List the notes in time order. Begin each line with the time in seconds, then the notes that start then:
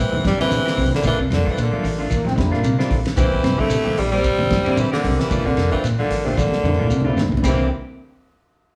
Already playing: E3 C4
0.12 E3, high conga, low conga
0.23 G2 G3 C4 D4 E4, kick, snare, ride bell, high conga, shekere
0.38 C3 D3 E3 G3 A#3 C4 E4 G4, snare, ride bell, claves
0.50 D3, ride bell, high conga, shekere
0.66 A#3 C4 G4, snare
0.76 C2 C3 D3 G3 C4 E4, kick, snare, open hi-hat, high conga, claves, shekere
0.94 D3 A#3, snare
1.03 A#1 E3 F3 A3 A#3 D4 F4, kick, ride bell, low conga, shekere
1.19 C3, kick
1.30 F2 D3, snare, ride bell, high conga, claves, shekere
1.35 A#3
1.45 D3 A3 C4 D4 F4, kick, snare, high conga
1.50 E3
1.58 A#2 A#3, ride bell, shekere
1.62 D3
1.72 A3 D4 F4, muted fingered electric bass stroke, high conga
1.83 A1 E3, open hi-hat, claves, shekere
1.99 D3 A3 D4 F4
2.10 E3 A#3, kick, ride bell, claves, shekere
2.25 F3 C4, snare, high conga, low conga
2.36 F2 D3 G3 A#3 C4 E4, kick, snare, ride bell, high conga, shekere
2.51 A#2 A3 D4 F4, snare, claves
2.63 C3, ride bell, high conga, shekere
2.77 D3 G3 A3 C4 D4 E4 F4, snare
2.90 A#1 D3, kick, snare, open hi-hat, high conga, claves, shekere
3.06 snare, ride bell
3.16 C2 D3 E3 G3 A#3 C4 E4 G4, kick, ride bell, low conga, shekere
3.32 kick
3.42 G2 C3 D3 G3 C4 E4, snare, ride bell, high conga, claves, shekere
3.58 D3 A3 A#3 C4 E4 G4, kick, high conga
3.70 C3, ride bell, shekere
3.84 E3 A#3 C4 G4, muted fingered electric bass stroke, high conga
3.97 A#1 G3 D4, open hi-hat, claves, shekere
4.11 G3 A#3 C4 G4
4.24 kick, ride bell, claves, shekere
4.38 E3, low conga
4.50 G2 C4 E4, kick, snare, ride bell, high conga, shekere
4.65 C3 D3 G3 A#3 C4 E4 G4, ride bell, claves
4.77 D3 E3 C4, ride bell, high conga, shekere
4.92 D3 A#3 C4 G4, snare
5.04 C2 C3 D3 G3 C4 G4, kick, snare, open hi-hat, high conga, claves, shekere
5.19 E3 A#3, snare
5.29 A#1 F3 A3 D4 F4, kick, ride bell, low conga, shekere
5.45 C3 D3 A#3, kick
5.57 F2, snare, ride bell, high conga, claves, shekere
5.72 D3 E3 A3 C4 D4 F4, kick
5.84 A#2, snare, ride bell, shekere
5.98 D3 A3 D4 F4, muted fingered electric bass stroke, high conga
6.04 A#3
6.10 A1 E3, snare, open hi-hat, claves, shekere
6.25 C3 D3 A3 D4 F4, low conga
6.29 A3
6.37 D3 E3 A#3, kick, high conga, claves, shekere
6.48 high conga
6.53 snare
6.58 high conga
6.63 F2 D3 G3 C4 E4, low conga, shekere
6.74 A#2, high conga
6.79 A3 D4 F4, mid tom, claves
6.83 low conga
6.90 C3, mid tom, shekere
7.01 low conga
7.05 D3 G3 A3 C4 D4 E4 F4
7.10 low conga
7.16 G2, muted clean electric guitar stroke, snare, low conga, claves, shekere
7.28 floor tom, low conga
7.37 low conga
7.42 C2 C3 D3 E3 G3 A#3 C4 E4 G4, kick, crash, low conga, claves, shekere